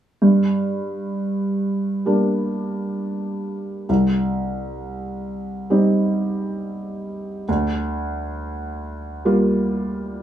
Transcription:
0.22 G2
2.06 G3 A#3 D4
3.89 C2
5.70 G3 C4 D#4
7.48 D2
9.25 G3 A#3 F4

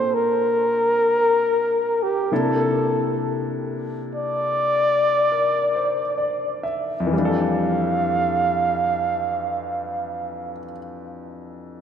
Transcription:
Already playing: A#2 A#3 C4 D4 C5
0.14 A#4
2.03 G4
2.32 C3 A#3 D4 E4 A4
4.15 D5
5.32 A#4
5.75 C5
6.18 D5
6.63 E5
7.00 F2
7.07 E3
7.13 G3 F5
7.18 D4
7.25 A4

